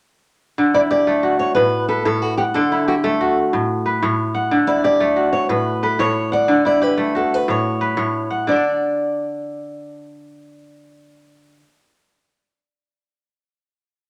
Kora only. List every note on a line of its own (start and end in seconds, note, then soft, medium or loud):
0.58 1.61 D3 medium
0.74 2.31 E4 medium
0.91 2.32 G4 medium
1.07 3.03 A3 medium
1.23 2.69 F#4 medium
1.56 2.04 A2 medium
1.89 3.12 B4 medium
2.05 2.59 A2 medium
2.05 2.61 C#5 medium
2.38 2.94 F#5 medium
2.55 3.57 D3 medium
2.72 4.28 E4 medium
2.88 4.29 G4 medium
3.04 5.00 A3 medium
3.21 4.67 F#4 medium
3.53 4.01 A2 medium
3.86 5.09 B4 medium
4.02 4.56 A2 medium
4.02 4.57 C#5 medium
4.35 4.90 F#5 medium
4.51 5.54 D3 medium
4.68 6.24 E4 medium
4.84 6.25 G4 medium
5.00 6.97 A3 medium
5.16 6.62 F#4 medium
5.49 5.98 A2 medium
5.83 7.06 B4 medium
5.99 6.53 A2 medium
5.99 6.54 C#5 medium
6.32 6.88 F#5 medium
6.48 7.53 D3 medium
6.65 8.22 E4 medium
6.82 8.23 G4 medium
6.97 8.97 A3 medium
7.15 8.61 F#4 medium
7.48 7.96 A2 medium
7.81 9.04 B4 medium
7.97 8.53 A2 medium
7.97 8.53 C#5 medium
8.30 9.27 F#5 medium
8.47 11.59 D3 medium
8.51 11.63 D4 medium
8.51 11.67 D5 medium